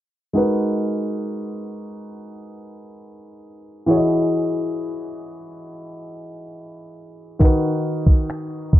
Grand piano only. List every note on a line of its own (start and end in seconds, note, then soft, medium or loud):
0.33 3.83 G#3 medium
0.33 3.83 D#4 medium
0.33 3.84 F#4 medium
0.33 3.85 A#4 medium
0.38 3.85 B4 medium
3.86 7.36 E3 medium
3.86 7.36 E4 medium
3.86 7.37 F#4 medium
3.86 7.37 G#4 medium
3.90 3.95 C#5 medium
3.97 7.41 D#5 medium
7.39 8.80 D#3 medium
7.39 8.80 D#4 medium
7.39 8.80 F#4 medium
7.39 8.80 A#4 medium
7.44 8.80 B4 medium